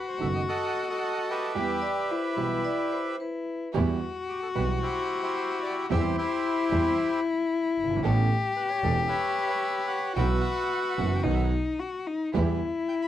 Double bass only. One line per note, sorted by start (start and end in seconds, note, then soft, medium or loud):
0.21 0.43 F#1 medium
3.75 3.97 E2 loud
4.57 4.79 B1 medium
5.92 6.13 E2 loud
6.71 6.93 E2 medium
7.77 8.03 G1 medium
8.04 8.26 A1 loud
8.84 9.06 E1 medium
10.17 10.40 B1 loud
10.98 11.21 F#1 medium
11.25 11.48 B1 medium
12.35 12.58 E2 loud